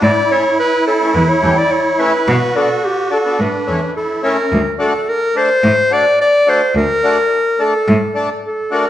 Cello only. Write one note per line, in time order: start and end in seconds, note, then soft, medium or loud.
0.02 0.10 A2 loud
1.15 1.23 E2 loud
1.43 1.51 E2 medium
2.28 2.36 B2 loud
3.39 3.47 A2 medium
3.68 3.76 E2 medium
4.52 4.60 D2 medium
5.63 5.71 A2 loud
6.75 6.83 D2 medium
7.88 7.96 A2 loud